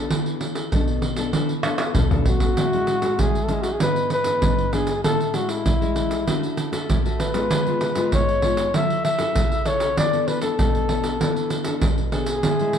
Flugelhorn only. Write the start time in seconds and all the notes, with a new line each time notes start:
2.27 F#4
3.20 G#4
3.44 A4
3.53 G#4
3.62 F#4
3.72 G#4
3.82 B4
4.13 B4
4.73 G#4
5.04 A4
5.35 F#4
5.50 E4
7.20 B4
8.13 C#5
8.75 E5
9.05 E5
9.67 C#5
9.98 D5
10.28 B4
10.43 A4
12.13 G#4